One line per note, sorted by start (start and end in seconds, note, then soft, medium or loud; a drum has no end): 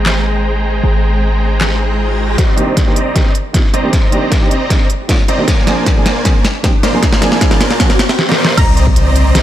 0.00 0.82 G#1 medium
0.00 2.35 D#3 medium
0.00 2.35 G#3 medium
0.00 2.36 G#3 medium
0.00 2.36 A#3 medium
0.00 2.36 C4 medium
0.00 2.36 G#4 medium
0.00 2.36 C5 medium
0.00 2.36 G5 medium
0.00 2.37 G5 medium
0.00 2.36 A#5 medium
0.00 riser medium
0.06 snare loud
0.06 clap medium
0.84 2.36 G#1 medium
1.61 snare loud
1.61 clap medium
2.38 3.31 C2 loud
2.38 3.33 C4 medium
2.38 3.33 C5 medium
2.38 3.33 D5 medium
2.38 3.33 D#5 medium
2.38 kick medium
2.38 snare soft
2.38 closed hi-hat medium
2.38 riser medium
2.57 2.84 D#3 medium
2.57 2.84 A#3 medium
2.57 2.85 C4 medium
2.57 2.85 D4 medium
2.57 2.85 G4 medium
2.57 closed hi-hat medium
2.77 kick medium
2.77 snare soft
2.77 closed hi-hat medium
2.86 2.94 D#3 medium
2.86 2.94 A#3 medium
2.86 2.95 C4 medium
2.86 2.95 D4 medium
2.86 2.95 G4 medium
2.96 closed hi-hat medium
3.15 3.20 D#3 medium
3.15 3.20 A#3 medium
3.15 3.21 C4 medium
3.15 3.21 D4 medium
3.15 3.21 G4 medium
3.15 kick medium
3.15 snare medium
3.15 closed hi-hat medium
3.35 closed hi-hat medium
3.53 3.59 D#3 medium
3.53 3.59 A#3 medium
3.53 3.59 C4 medium
3.53 3.60 D4 medium
3.53 3.60 F4 medium
3.53 kick medium
3.53 snare medium
3.53 closed hi-hat medium
3.74 3.91 C2 medium
3.74 3.91 C4 medium
3.74 3.91 C5 medium
3.74 3.91 D5 medium
3.74 3.91 D#5 medium
3.74 3.91 A#5 loud
3.74 closed hi-hat medium
3.83 3.91 D#3 medium
3.83 3.91 A#3 medium
3.83 3.91 C4 medium
3.83 3.92 D4 medium
3.83 3.92 G4 medium
3.93 4.86 C2 medium
3.93 4.88 C4 medium
3.93 4.88 C5 medium
3.93 kick medium
3.93 snare medium
3.93 closed hi-hat medium
4.11 4.39 D#3 medium
4.11 4.39 A#3 medium
4.11 4.39 C4 medium
4.11 4.39 D4 medium
4.11 4.40 G4 loud
4.11 closed hi-hat medium
4.32 kick medium
4.32 snare medium
4.32 closed hi-hat medium
4.41 4.49 D#3 medium
4.41 4.49 A#3 medium
4.41 4.49 C4 medium
4.41 4.50 D4 medium
4.41 4.50 G4 medium
4.51 closed hi-hat medium
4.69 4.75 D#3 medium
4.69 4.75 A#3 medium
4.69 4.76 C4 medium
4.69 4.76 D4 medium
4.69 4.76 G4 medium
4.69 kick medium
4.69 snare medium
4.69 closed hi-hat medium
4.90 closed hi-hat medium
5.08 5.14 D#3 medium
5.08 5.14 A#3 medium
5.08 5.14 C4 medium
5.08 5.15 D4 medium
5.08 5.15 F4 medium
5.08 kick medium
5.08 snare medium
5.08 closed hi-hat medium
5.28 5.46 C2 medium
5.28 5.46 C4 medium
5.28 5.46 C5 medium
5.28 5.46 D5 medium
5.28 5.46 D#5 medium
5.28 5.46 A#5 loud
5.28 closed hi-hat medium
5.38 5.46 D#3 medium
5.38 5.46 A#3 medium
5.38 5.46 C4 medium
5.38 5.47 D4 medium
5.38 5.47 G4 medium
5.48 6.41 A#1 loud
5.48 6.43 A#3 medium
5.48 6.43 A#4 medium
5.48 6.42 C5 medium
5.48 6.43 D5 medium
5.48 6.42 G#5 loud
5.48 kick medium
5.48 snare medium
5.48 closed hi-hat medium
5.66 5.94 F3 medium
5.66 5.94 A#3 medium
5.66 5.94 C4 medium
5.66 5.94 D4 medium
5.66 5.95 G#4 loud
5.66 snare medium
5.66 closed hi-hat medium
5.86 kick medium
5.86 snare medium
5.86 closed hi-hat medium
5.96 6.04 F3 medium
5.96 6.04 A#3 medium
5.96 6.04 C4 medium
5.96 6.05 D4 medium
5.96 6.05 G#4 medium
6.06 snare medium
6.06 closed hi-hat medium
6.24 6.30 F3 medium
6.24 6.30 A#3 medium
6.24 6.31 C4 medium
6.24 6.31 D4 medium
6.24 6.31 G#4 medium
6.24 kick medium
6.24 snare medium
6.24 closed hi-hat medium
6.45 snare medium
6.45 closed hi-hat medium
6.63 6.69 F3 medium
6.63 6.69 A#3 medium
6.63 6.69 C4 medium
6.63 6.69 D4 medium
6.63 6.70 G4 medium
6.63 kick medium
6.63 snare medium
6.63 closed hi-hat medium
6.83 7.01 A#1 medium
6.83 7.01 A#3 medium
6.83 7.01 A#4 medium
6.83 7.01 C5 medium
6.83 7.00 D5 medium
6.83 7.01 C6 loud
6.83 snare medium
6.83 closed hi-hat medium
6.92 7.01 F3 medium
6.92 7.01 A#3 medium
6.92 7.01 C4 medium
6.92 7.01 D4 medium
6.92 7.02 G#4 loud
7.03 7.95 A#1 loud
7.03 7.97 A#3 medium
7.03 7.97 C5 medium
7.03 7.97 G#5 loud
7.03 kick loud
7.03 snare medium
7.03 closed hi-hat medium
7.13 snare medium
7.21 7.49 F3 medium
7.21 7.49 A#3 medium
7.21 7.49 C4 medium
7.21 7.49 D4 medium
7.21 7.49 G#4 loud
7.21 snare medium
7.21 closed hi-hat medium
7.32 snare medium
7.41 kick loud
7.41 snare loud
7.41 closed hi-hat medium
7.51 7.59 F3 medium
7.51 7.59 A#3 medium
7.51 7.59 C4 medium
7.51 7.60 D4 medium
7.51 7.60 G#4 medium
7.51 snare medium
7.61 snare loud
7.61 closed hi-hat medium
7.71 snare medium
7.79 7.85 F3 medium
7.79 7.85 A#3 medium
7.79 7.85 C4 medium
7.79 7.86 D4 medium
7.79 7.86 G#4 medium
7.79 kick medium
7.79 snare loud
7.79 closed hi-hat medium
7.79 swell medium
7.90 snare medium
7.99 snare loud
7.99 closed hi-hat medium
8.09 snare medium
8.19 snare medium
8.29 8.36 A#3 medium
8.29 8.36 A#4 medium
8.29 8.36 C5 medium
8.29 8.36 D5 medium
8.29 8.36 A#5 medium
8.29 snare medium
8.38 8.55 A#3 loud
8.38 8.55 A#4 medium
8.38 8.55 C5 medium
8.38 8.55 D5 medium
8.38 8.55 C6 loud
8.45 snare loud
8.57 9.43 C2 loud
8.57 9.43 A#5 loud
8.57 kick loud
8.57 closed hi-hat medium
8.57 crash loud
8.57 impact medium
8.57 high woodblock medium
8.77 closed hi-hat medium
8.87 kick medium
8.96 closed hi-hat medium
9.16 closed hi-hat medium
9.35 snare loud
9.35 closed hi-hat medium